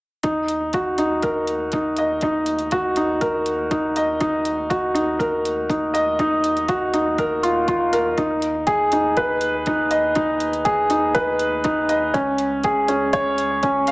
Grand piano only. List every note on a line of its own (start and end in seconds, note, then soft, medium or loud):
0.23 0.47 D#4 medium
0.74 0.97 F#4 medium
0.98 1.22 D#4 medium
1.23 1.47 A#4 medium
1.73 1.97 D#4 medium
1.98 2.22 D#5 medium
2.23 2.46 D#4 medium
2.72 2.96 F#4 medium
2.97 3.20 D#4 medium
3.21 3.45 A#4 medium
3.71 3.95 D#4 medium
3.97 4.20 D#5 medium
4.21 4.44 D#4 medium
4.70 4.94 F#4 medium
4.95 5.18 D#4 medium
5.19 5.43 A#4 medium
5.69 5.93 D#4 medium
5.94 6.18 D#5 medium
6.20 6.43 D#4 medium
6.69 6.92 F#4 medium
6.94 7.17 D#4 medium
7.19 7.42 A#4 medium
7.43 7.57 F4 medium
7.68 7.92 F4 medium
7.93 8.07 A#4 medium
8.18 8.41 D#4 medium
8.67 8.90 G#4 medium
8.93 9.16 D#4 medium
9.17 9.40 B4 medium
9.67 9.90 D#4 medium
9.91 10.15 D#5 medium
10.16 10.39 D#4 medium
10.65 10.89 G#4 medium
10.90 11.14 D#4 medium
11.15 11.38 B4 medium
11.64 11.88 D#4 medium
11.89 12.13 D#5 medium
12.14 12.38 C#4 medium
12.64 12.88 G#4 medium
12.88 13.12 C#4 medium
13.13 13.37 C#5 medium
13.63 13.87 C#4 medium
13.88 13.92 F5 medium